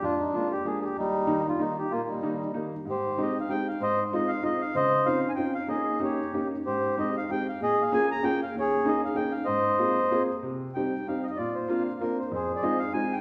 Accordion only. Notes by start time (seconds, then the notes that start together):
0.03 D4 F4
0.20 D#4
0.35 F4
0.51 G4
0.67 G#4
0.81 G4 G#4
0.98 G3 D#4
1.48 F4
1.59 D#4
1.79 G4
1.91 A#3 F4
2.08 G3 D#4
2.89 G4 C5
3.22 D#5
3.40 F5
3.50 G5
3.68 F5
3.82 C5 D#5
4.05 C5
4.14 D#5
4.28 F5
4.45 D#5
4.61 F5
4.76 C5 D#5
5.06 F5
5.29 G#5
5.35 G5
5.55 F5
5.69 G#4 D#5
6.03 G4 C#5
6.65 G4 C5
7.00 D#5
7.17 F5
7.31 G5
7.49 F5
7.62 G#4 D#5
7.82 F5
7.93 G#5
8.11 A#5
8.24 G5
8.43 F5
8.59 G#4 C#5
8.88 D#5
9.05 F5
9.16 G5
9.31 F5
9.45 C5 D#5
10.75 G5
11.08 F5
11.23 D#5 F5
11.30 D#5
11.36 F4 D5
11.55 C5
11.70 F5
12.01 A#4
12.19 C5
12.34 G#4 C5
12.56 D5
12.62 D#5
12.79 F5
12.93 G#5
13.13 G5